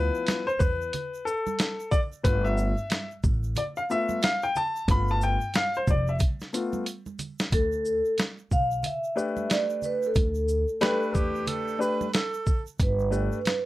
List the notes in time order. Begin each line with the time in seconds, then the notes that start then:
Already playing: F3 B3 E4 B4
0.15 shaker
0.27 snare, closed hi-hat, high conga, shaker
0.47 C5, shaker
0.59 E2 B4, kick, low conga, shaker
0.82 shaker
0.93 closed hi-hat, low conga, shaker
1.14 shaker
1.25 A4, shaker
1.47 high conga, shaker
1.59 snare, closed hi-hat, shaker
1.80 shaker
1.91 D5, kick, low conga, shaker
2.12 shaker
2.23 G1 A3 B3 F4 B4, kick, closed hi-hat, shaker
2.45 E5, shaker
2.57 shaker
2.77 shaker
2.90 snare, closed hi-hat, high conga, shaker
3.11 shaker
3.23 A1, kick, low conga, shaker
3.43 shaker
3.56 D5, closed hi-hat, low conga, shaker
3.77 F5, shaker
3.90 A3 B3 F4 E5, shaker
4.09 high conga, shaker
4.22 F5, snare, closed hi-hat, shaker
4.42 G5, shaker
4.55 A5, low conga, shaker
4.76 shaker
4.88 G1 A3 B3 F4 B5, kick, closed hi-hat, shaker
5.08 A5, shaker
5.21 G5, shaker
5.41 shaker
5.54 F5, snare, closed hi-hat, high conga, shaker
5.74 C5, shaker
5.87 F1 D5, kick, high conga, low conga, shaker
6.07 E5, shaker
6.19 kick, closed hi-hat, high conga, low conga, shaker
6.40 snare, shaker
6.53 A3 B3 F4, closed hi-hat, shaker
6.73 high conga, shaker
6.86 closed hi-hat, shaker
7.06 high conga, shaker
7.19 closed hi-hat, low conga, shaker
7.39 snare, shaker
7.52 D2 A4, kick, closed hi-hat, shaker
7.72 shaker
7.85 shaker
8.05 shaker
8.18 snare, closed hi-hat, high conga, shaker
8.38 shaker
8.51 B1 F5, kick, low conga, shaker
8.71 shaker
8.83 E5, closed hi-hat, low conga, shaker
9.04 shaker
9.16 A3 D4 G4 B4, shaker
9.37 high conga, shaker
9.50 D5, snare, closed hi-hat, shaker
9.70 shaker
9.82 B4, low conga, shaker
10.03 A4, shaker
10.15 D2, kick, closed hi-hat, shaker
10.35 shaker
10.48 shaker
10.68 shaker
10.81 A3 D4 G4 B4, snare, closed hi-hat, high conga, shaker
11.02 shaker
11.14 E2 G4, kick, low conga, shaker
11.35 shaker
11.47 A4, closed hi-hat, low conga, shaker
11.68 shaker
11.79 A3 D4 G4 B4, shaker
12.01 high conga, shaker
12.14 A4, snare, closed hi-hat, shaker
12.34 shaker
12.46 kick, low conga, shaker
12.67 shaker
12.79 G1 B4, kick, closed hi-hat, shaker
12.99 shaker
13.11 A3 D4 G4 B4, shaker
13.32 shaker
13.45 snare, closed hi-hat, high conga, shaker